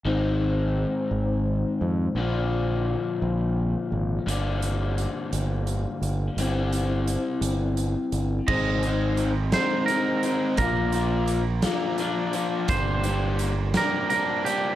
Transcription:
0.05 0.84 G#1 medium
0.05 2.14 G#2 medium
0.05 2.14 D#3 medium
0.05 2.14 G#3 medium
0.05 2.14 C4 medium
0.05 2.15 D#4 medium
1.11 1.63 G#1 medium
1.81 2.07 F2 medium
2.15 2.94 A#1 medium
2.15 4.25 A#2 medium
2.15 4.25 D3 medium
2.15 4.25 F3 medium
2.15 4.26 A#3 medium
2.15 4.29 D4 medium
3.22 3.74 A#1 medium
3.92 4.18 G#1 medium
4.26 5.06 G1 medium
4.26 6.35 G2 medium
4.26 6.36 D3 medium
4.26 6.36 G3 medium
4.26 6.36 A#3 medium
4.26 6.37 D4 medium
4.26 closed hi-hat medium
4.62 closed hi-hat medium
4.98 closed hi-hat soft
5.33 5.85 G1 medium
5.33 closed hi-hat medium
5.67 closed hi-hat soft
6.02 6.28 G1 medium
6.02 closed hi-hat soft
6.37 7.16 G1 medium
6.37 8.47 G3 medium
6.37 8.47 C4 medium
6.37 8.47 E4 medium
6.37 closed hi-hat medium
6.41 8.48 G4 medium
6.73 closed hi-hat soft
7.08 closed hi-hat medium
7.41 7.95 G1 medium
7.41 closed hi-hat medium
7.77 closed hi-hat medium
8.12 8.39 G1 medium
8.12 closed hi-hat soft
8.48 9.54 G#1 medium
8.48 8.83 D#3 medium
8.48 8.84 G#3 medium
8.48 8.84 C4 medium
8.48 8.84 D#4 medium
8.48 9.53 D#5 medium
8.48 kick medium
8.48 crash medium
8.83 9.31 D#3 medium
8.83 9.30 G#3 medium
8.83 9.30 C4 medium
8.83 9.30 D#4 medium
8.83 closed hi-hat soft
9.17 10.58 C4 medium
9.17 closed hi-hat medium
9.52 9.88 D#3 medium
9.52 9.89 G#3 medium
9.52 9.89 C4 medium
9.52 9.89 D#4 medium
9.52 11.62 A#4 medium
9.52 9.85 C5 medium
9.52 snare medium
9.52 closed hi-hat medium
9.86 10.24 D#3 medium
9.86 10.54 A#4 medium
9.86 closed hi-hat medium
9.90 10.23 G#3 medium
9.90 10.23 C4 medium
9.90 10.22 D#4 medium
10.23 10.59 D#3 medium
10.23 10.59 G#3 medium
10.23 10.59 C4 medium
10.23 10.59 D#4 medium
10.23 closed hi-hat medium
10.57 11.64 A#1 medium
10.57 12.34 A#2 medium
10.57 10.94 F3 medium
10.57 10.95 A#3 medium
10.57 10.94 D4 medium
10.57 10.93 F4 medium
10.57 11.95 A#4 medium
10.57 kick medium
10.57 closed hi-hat medium
10.92 11.41 F3 medium
10.92 11.41 A#3 medium
10.92 11.40 D4 medium
10.92 11.40 F4 medium
10.92 closed hi-hat medium
11.26 12.68 A#3 medium
11.26 closed hi-hat medium
11.62 11.98 F3 medium
11.62 11.98 A#3 medium
11.62 11.99 D4 medium
11.62 11.99 F4 medium
11.62 12.69 A#4 medium
11.62 snare loud
11.62 closed hi-hat medium
11.98 12.33 F3 medium
11.98 12.34 A#3 medium
11.98 12.33 D4 medium
11.98 12.33 F4 medium
11.98 closed hi-hat soft
12.33 12.70 F3 medium
12.33 12.70 A#3 medium
12.33 12.70 D4 medium
12.33 12.69 F4 medium
12.33 closed hi-hat medium
12.67 13.75 G1 medium
12.67 14.44 G2 medium
12.67 13.05 G3 medium
12.67 13.77 C5 medium
12.67 kick loud
12.67 closed hi-hat medium
12.71 13.04 A#3 medium
12.71 13.04 D4 medium
12.71 13.04 G4 medium
13.04 13.51 G3 medium
13.04 13.51 A#3 medium
13.04 13.51 D4 medium
13.04 13.51 G4 medium
13.04 closed hi-hat medium
13.39 14.75 A#3 medium
13.39 closed hi-hat medium
13.74 14.10 G3 medium
13.74 14.10 A#3 medium
13.74 14.11 D4 medium
13.74 14.10 G4 medium
13.74 14.75 A#4 medium
13.74 14.08 A#4 medium
13.74 snare loud
13.74 closed hi-hat medium
14.10 14.46 G3 medium
14.10 14.46 A#3 medium
14.10 14.45 D4 medium
14.10 14.46 G4 medium
14.10 14.46 A#4 medium
14.10 closed hi-hat medium
14.45 14.75 G3 medium
14.45 14.75 A#3 medium
14.45 14.75 D4 medium
14.45 14.75 G4 medium
14.45 closed hi-hat medium

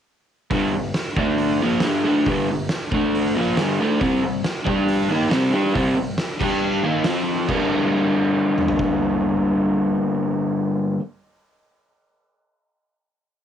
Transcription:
0.51 0.72 G2 medium
0.51 0.73 D3 loud
0.51 0.74 G3 loud
0.51 kick loud
0.51 open hi-hat medium
0.74 0.91 G2 medium
0.74 0.92 D3 medium
0.94 snare loud
0.94 open hi-hat medium
1.17 1.60 D3 medium
1.17 1.61 A3 medium
1.17 1.61 D4 loud
1.17 kick loud
1.38 open hi-hat medium
1.62 1.83 A#2 loud
1.62 1.83 F3 loud
1.62 1.84 A#3 loud
1.80 2.04 G2 medium
1.80 2.03 D3 loud
1.80 snare loud
1.80 open hi-hat medium
1.84 2.04 G3 loud
2.04 2.26 D3 medium
2.04 2.26 A3 medium
2.04 2.27 D4 loud
2.25 2.48 G2 loud
2.25 2.48 D3 medium
2.25 2.49 G3 loud
2.25 kick loud
2.25 open hi-hat medium
2.51 2.68 G2 medium
2.51 2.68 D3 medium
2.69 snare loud
2.69 open hi-hat medium
2.92 3.35 D3 medium
2.92 3.36 A3 loud
2.92 3.37 D4 loud
2.92 kick loud
3.15 open hi-hat medium
3.36 3.57 A#2 loud
3.36 3.58 F3 loud
3.36 3.59 A#3 loud
3.57 3.79 G2 medium
3.57 3.79 D3 medium
3.57 3.80 G3 loud
3.57 snare loud
3.57 open hi-hat medium
3.80 4.00 D3 medium
3.80 4.01 A3 loud
3.80 4.02 D4 loud
4.00 4.22 C3 medium
4.00 4.23 G3 loud
4.00 4.23 C4 loud
4.00 kick loud
4.00 open hi-hat medium
4.23 4.41 C3 medium
4.23 4.41 G3 medium
4.45 snare loud
4.45 open hi-hat medium
4.65 5.09 G3 medium
4.65 5.09 D4 medium
4.65 5.10 G4 loud
4.65 kick loud
4.88 open hi-hat medium
5.09 5.30 D#3 loud
5.09 5.30 A#3 loud
5.09 5.32 D#4 loud
5.31 5.53 C3 loud
5.31 5.51 G3 loud
5.31 5.53 C4 loud
5.31 snare loud
5.31 open hi-hat medium
5.53 5.74 G3 loud
5.53 5.75 D4 loud
5.53 5.76 G4 loud
5.73 5.95 C3 loud
5.73 5.95 G3 loud
5.73 5.97 C4 loud
5.73 kick loud
5.73 open hi-hat medium
5.96 6.14 C3 medium
5.96 6.14 G3 medium
6.18 snare loud
6.18 open hi-hat medium
6.40 6.83 G3 medium
6.40 6.84 D4 medium
6.40 6.84 G4 loud
6.40 kick loud
6.40 crash loud
6.83 7.03 D#3 loud
6.83 7.04 A#3 loud
6.83 7.06 D#4 loud
7.04 7.48 F3 medium
7.04 7.48 C4 loud
7.04 7.49 F4 loud
7.04 snare loud
7.04 open hi-hat medium
7.47 10.97 G2 medium
7.47 10.99 D3 loud
7.47 10.99 G3 loud
7.47 11.00 A#3 loud
7.47 11.00 D4 loud
7.47 kick medium
7.47 crash medium
8.58 mid tom medium
8.68 floor tom medium
8.79 kick medium

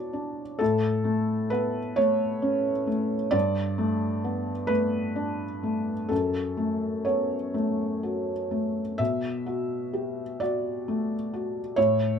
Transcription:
0.00 0.57 B2 medium
0.00 0.13 D4 soft
0.00 0.63 E4 soft
0.00 0.41 F#4 soft
0.00 0.59 D5 medium
0.13 0.60 D4 soft
0.59 3.30 A2 medium
0.59 1.51 A4 medium
1.04 1.78 A3 medium
1.50 1.97 B3 soft
1.50 1.96 B4 medium
1.96 2.70 A3 medium
1.96 2.88 C#5 medium
2.42 3.15 C#4 medium
2.87 3.33 A3 soft
3.31 6.06 G2 medium
3.31 4.69 D5 loud
3.78 4.51 A3 medium
4.24 4.70 B3 soft
4.67 5.44 A3 medium
4.67 6.09 B4 medium
5.16 5.91 D4 medium
5.63 6.10 A3 soft
6.09 8.95 F#2 medium
6.09 7.05 A4 medium
6.57 7.34 A3 soft
7.05 7.54 B3 soft
7.05 8.99 C#5 medium
7.54 8.31 A3 soft
8.03 8.81 F#4 soft
8.51 9.00 A3 soft
8.98 11.73 B2 medium
8.98 10.40 E5 medium
9.46 10.22 F#4 soft
9.93 10.41 G4 soft
10.40 11.15 F#4 medium
10.40 11.76 D5 medium
10.88 11.60 A3 soft
11.34 11.77 F#4 medium
11.76 12.19 A2 medium
11.76 12.19 C#5 medium

